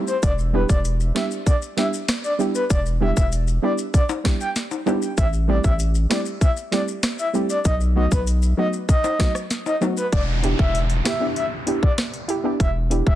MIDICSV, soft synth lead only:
0, 0, Header, 1, 2, 480
1, 0, Start_track
1, 0, Key_signature, 1, "minor"
1, 0, Tempo, 618557
1, 178, Time_signature, 4, 2, 24, 8
1, 10206, End_track
2, 0, Start_track
2, 0, Title_t, "Soft synth lead"
2, 0, Program_c, 0, 80
2, 57, Note_on_c, 0, 72, 77
2, 133, Note_off_c, 0, 72, 0
2, 177, Note_on_c, 0, 74, 103
2, 253, Note_off_c, 0, 74, 0
2, 417, Note_on_c, 0, 71, 86
2, 492, Note_off_c, 0, 71, 0
2, 538, Note_on_c, 0, 74, 86
2, 613, Note_off_c, 0, 74, 0
2, 896, Note_on_c, 0, 76, 87
2, 972, Note_off_c, 0, 76, 0
2, 1136, Note_on_c, 0, 74, 87
2, 1212, Note_off_c, 0, 74, 0
2, 1377, Note_on_c, 0, 76, 79
2, 1452, Note_off_c, 0, 76, 0
2, 1737, Note_on_c, 0, 74, 76
2, 1813, Note_off_c, 0, 74, 0
2, 1975, Note_on_c, 0, 71, 84
2, 2052, Note_off_c, 0, 71, 0
2, 2096, Note_on_c, 0, 74, 113
2, 2172, Note_off_c, 0, 74, 0
2, 2338, Note_on_c, 0, 76, 78
2, 2413, Note_off_c, 0, 76, 0
2, 2458, Note_on_c, 0, 76, 76
2, 2533, Note_off_c, 0, 76, 0
2, 2817, Note_on_c, 0, 74, 86
2, 2893, Note_off_c, 0, 74, 0
2, 3057, Note_on_c, 0, 74, 88
2, 3133, Note_off_c, 0, 74, 0
2, 3417, Note_on_c, 0, 79, 75
2, 3493, Note_off_c, 0, 79, 0
2, 4018, Note_on_c, 0, 76, 106
2, 4093, Note_off_c, 0, 76, 0
2, 4257, Note_on_c, 0, 74, 83
2, 4333, Note_off_c, 0, 74, 0
2, 4378, Note_on_c, 0, 76, 72
2, 4453, Note_off_c, 0, 76, 0
2, 4737, Note_on_c, 0, 74, 75
2, 4813, Note_off_c, 0, 74, 0
2, 4978, Note_on_c, 0, 76, 88
2, 5053, Note_off_c, 0, 76, 0
2, 5217, Note_on_c, 0, 74, 83
2, 5293, Note_off_c, 0, 74, 0
2, 5578, Note_on_c, 0, 76, 75
2, 5654, Note_off_c, 0, 76, 0
2, 5818, Note_on_c, 0, 74, 81
2, 5893, Note_off_c, 0, 74, 0
2, 5938, Note_on_c, 0, 75, 108
2, 6013, Note_off_c, 0, 75, 0
2, 6179, Note_on_c, 0, 75, 85
2, 6254, Note_off_c, 0, 75, 0
2, 6300, Note_on_c, 0, 71, 77
2, 6375, Note_off_c, 0, 71, 0
2, 6659, Note_on_c, 0, 75, 89
2, 6734, Note_off_c, 0, 75, 0
2, 6898, Note_on_c, 0, 75, 114
2, 7236, Note_off_c, 0, 75, 0
2, 7498, Note_on_c, 0, 75, 80
2, 7573, Note_off_c, 0, 75, 0
2, 7737, Note_on_c, 0, 71, 78
2, 7812, Note_off_c, 0, 71, 0
2, 7857, Note_on_c, 0, 74, 105
2, 7933, Note_off_c, 0, 74, 0
2, 8219, Note_on_c, 0, 76, 81
2, 8369, Note_off_c, 0, 76, 0
2, 8579, Note_on_c, 0, 76, 84
2, 8730, Note_off_c, 0, 76, 0
2, 8817, Note_on_c, 0, 76, 88
2, 8893, Note_off_c, 0, 76, 0
2, 9179, Note_on_c, 0, 74, 82
2, 9254, Note_off_c, 0, 74, 0
2, 9779, Note_on_c, 0, 76, 91
2, 9854, Note_off_c, 0, 76, 0
2, 10140, Note_on_c, 0, 76, 71
2, 10206, Note_off_c, 0, 76, 0
2, 10206, End_track
0, 0, End_of_file